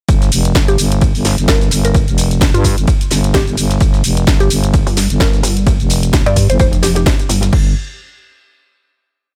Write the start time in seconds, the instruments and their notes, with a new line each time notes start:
0.08 fm bass G1, kick, ride, shaker
0.22 snare, closed hi-hat, shaker
0.32 fm bass F1, open hi-hat, ride, shaker
0.45 closed hi-hat, shaker
0.55 fm bass G1, kick, snare, ride, shaker
0.68 synth pluck G4, closed hi-hat, shaker
0.78 fm bass G1, open hi-hat, ride, shaker
0.92 closed hi-hat, shaker
1.01 kick, ride, shaker
1.15 fm bass G1, open hi-hat, shaker
1.25 snare, open hi-hat, ride, shaker
1.38 fm bass G1, closed hi-hat, shaker
1.48 synth pluck A#4, kick, snare, ride, shaker
1.61 snare, closed hi-hat, shaker
1.71 fm bass G1, snare, open hi-hat, ride, shaker
1.85 synth pluck A#4, closed hi-hat, shaker
1.94 kick, ride, shaker
2.08 fm bass F1, closed hi-hat, shaker
2.18 open hi-hat, ride, shaker
2.31 closed hi-hat, shaker
2.41 kick, snare, ride, shaker
2.54 fm bass G2, synth pluck F4, closed hi-hat, shaker
2.64 kick, open hi-hat, ride, shaker
2.78 fm bass G1, closed hi-hat, shaker
2.87 kick, ride, shaker
3.01 closed hi-hat, shaker
3.11 fm bass G1, snare, open hi-hat, ride, shaker
3.24 closed hi-hat, shaker
3.34 synth pluck G4, kick, snare, ride, shaker
3.47 fm bass G1, closed hi-hat, shaker
3.57 fm bass G1, open hi-hat, ride, shaker
3.71 snare, closed hi-hat, shaker
3.80 fm bass G1, kick, ride, shaker
3.94 snare, closed hi-hat, shaker
4.04 fm bass F1, open hi-hat, ride, shaker
4.17 closed hi-hat, shaker
4.27 fm bass G1, kick, snare, ride, shaker
4.40 synth pluck G4, closed hi-hat, shaker
4.50 fm bass G1, open hi-hat, ride, shaker
4.64 closed hi-hat, shaker
4.74 kick, ride, shaker
4.87 wobble bass G1, open hi-hat, shaker
4.97 snare, open hi-hat, ride, shaker
5.10 fm bass G1, closed hi-hat, shaker
5.20 synth pluck A#4, kick, snare, ride, shaker
5.33 snare, closed hi-hat, shaker
5.43 wobble bass G1, snare, open hi-hat, ride, shaker
5.57 closed hi-hat, shaker
5.67 kick, ride, shaker
5.80 fm bass F1, closed hi-hat, shaker
5.90 open hi-hat, ride, shaker
6.03 closed hi-hat, shaker
6.13 kick, snare, ride, shaker
6.26 wobble bass G2, synth pluck D5, closed hi-hat, shaker
6.36 kick, open hi-hat, ride, shaker
6.50 fm bass G1, synth pluck C5, closed hi-hat, shaker
6.59 wobble bass F1, synth pluck C5, kick, ride, shaker
6.73 closed hi-hat, shaker
6.83 synth pluck G4, snare, open hi-hat, ride, shaker
6.96 synth pluck G4, closed hi-hat, shaker
7.06 kick, snare, ride, shaker
7.20 closed hi-hat, shaker
7.29 wobble bass G1, open hi-hat, ride, shaker
7.43 snare, closed hi-hat, shaker
7.53 fm bass G1, kick, crash